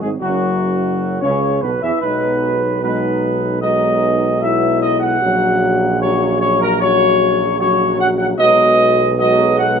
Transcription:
0.01 G#1 G#2
0.20 F#1 F#3 F#4
0.24 F#2
1.21 C#2 C#3 C#4 C#5
1.61 B1 B2 B3 B4
1.82 E2 E3 E4 E5
2.01 B1 B2 F#3 G#3 D#4 B4
2.82 B2 F#3 G#3 D#4 B4
3.61 B2 F#3 G#3 D#4 D#5
4.41 E4 E5
4.81 D#5
5.00 F#5
5.21 A#1 C#3 F#3 F#4
6.00 C#3 F#3 F#4 C#5
6.40 C#5
6.61 A#4
6.80 C#3 F#3 F#4 C#5
7.59 C#3 F#3 F#4 C#5
7.98 F#5
8.18 F#5
8.37 B1 B2 F#3 G#3 F#4 D#5
9.17 B2 F#3 G#3 F#4 D#5
9.58 F#5

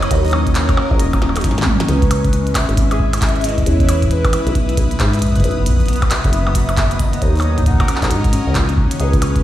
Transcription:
Already playing: F#3 B3 D#4 E4 F#4 G#4 B4 C#5 D#5 D#6
0.02 B4, closed hi-hat, percussion blips
0.11 D#2 A#4, kick, closed hi-hat
0.25 D#5, closed hi-hat
0.26 A#4, closed hi-hat
0.28 closed hi-hat
0.30 C#4, closed hi-hat
0.31 C#4, closed hi-hat, percussion blips
0.47 kick, closed hi-hat
0.55 F#4, clap, closed hi-hat
0.69 A#4, kick, closed hi-hat, percussion blips
0.77 A#3, percussion blips
0.91 A#1, kick
1.00 D#1 D#5, closed hi-hat
1.13 D#4, kick, closed hi-hat, percussion blips
1.22 A#4, snare, percussion blips
1.29 percussion blips
1.36 D#4, closed hi-hat, high tom, percussion blips
1.41 G#2 C#4, kick, snare, closed hi-hat
1.44 closed hi-hat
1.51 snare
1.58 D#3, snare, closed hi-hat
1.62 snare, clap
1.66 kick, mid tom
1.80 D#4, snare, closed hi-hat
1.89 C#2 G#3 C#4 B4, closed hi-hat
2.02 C#5, kick, closed hi-hat
2.11 B4, closed hi-hat, percussion blips
2.25 C#4 E4, kick, closed hi-hat
2.33 C#4, closed hi-hat
2.47 closed hi-hat
2.55 C#5 E5, kick, clap, closed hi-hat, percussion blips
2.69 G#1 C#4 E5, closed hi-hat
2.77 C#4, kick, closed hi-hat
2.91 G#4, closed hi-hat, percussion blips
3.00 kick
3.13 C#4, closed hi-hat, percussion blips
3.18 closed hi-hat
3.22 C#5, kick, clap, closed hi-hat
3.29 closed hi-hat
3.36 closed hi-hat
3.41 closed hi-hat
3.44 C#4 D#5, closed hi-hat
3.58 C#4, kick, closed hi-hat
3.62 kick
3.66 E2 C#5, kick, closed hi-hat
3.73 kick
3.80 E5, kick, closed hi-hat
3.89 E4 D#6, closed hi-hat, percussion blips
4.02 E4, kick, closed hi-hat
4.08 B4, kick, closed hi-hat
4.25 kick, closed hi-hat, percussion blips
4.33 E4, closed hi-hat, percussion blips
4.47 B1 E5, closed hi-hat
4.55 kick, closed hi-hat
4.69 E4, closed hi-hat
4.77 B1 E4, kick, closed hi-hat
4.91 closed hi-hat
5.00 G#2 E5, kick, clap, closed hi-hat
5.13 E4, closed hi-hat
5.19 kick, closed hi-hat
5.22 E4, kick, closed hi-hat
5.26 kick, closed hi-hat
5.29 kick, closed hi-hat
5.36 B4, kick, closed hi-hat
5.38 kick, closed hi-hat
5.40 kick
5.42 B1 F#3 B4, kick, closed hi-hat
5.51 B3, closed hi-hat
5.56 D#3 B3, kick
5.60 kick
5.62 kick
5.64 kick, closed hi-hat
5.66 B4, kick
5.70 kick
5.73 kick
5.77 kick
5.80 kick, closed hi-hat
5.86 closed hi-hat
5.88 B3, closed hi-hat
5.93 closed hi-hat
5.96 closed hi-hat
6.02 B3, kick, closed hi-hat, percussion blips
6.11 E5, clap, closed hi-hat, percussion blips
6.24 F#1 B4, kick, closed hi-hat
6.33 B3, closed hi-hat
6.47 B3, percussion blips
6.55 F#4, kick, closed hi-hat
6.69 closed hi-hat, percussion blips
6.77 B3, kick, clap, closed hi-hat
6.91 B4, closed hi-hat
7.00 D#5, kick, closed hi-hat
7.13 B3, closed hi-hat
7.22 D#2 D#4 C#5, kick, closed hi-hat
7.28 C#4
7.36 closed hi-hat
7.37 closed hi-hat
7.39 closed hi-hat, percussion blips
7.41 closed hi-hat
7.42 D#5, closed hi-hat
7.58 D#4, kick, closed hi-hat
7.63 F#5, kick
7.66 D#4, kick, closed hi-hat
7.71 kick
7.74 kick
7.80 A#4, kick, closed hi-hat, percussion blips
7.88 closed hi-hat, percussion blips
7.96 clap
8.02 A#1 D#4, kick, clap, closed hi-hat
8.11 G#2 D#5, closed hi-hat
8.24 kick, closed hi-hat
8.33 C#4, closed hi-hat
8.47 C#2 D#5
8.55 A#3, kick, clap, closed hi-hat
8.69 C#4, closed hi-hat
8.77 F#4, kick
8.91 D#3, closed hi-hat
9.00 C#2 G#3 G#4 B4, closed hi-hat
9.13 kick, closed hi-hat
9.22 C#4, closed hi-hat, percussion blips
9.36 C#5, kick, closed hi-hat

